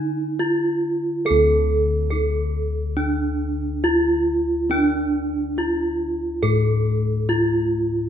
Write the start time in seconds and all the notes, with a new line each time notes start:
Already playing: D3 D4 D#4
0.39 D#4 F4
1.25 A4
1.30 D2
2.10 D#4 A4
2.97 D4
3.84 D#4 F4
4.70 D4
5.56 D#4 F4
6.43 A2 A4
7.29 D#4 F4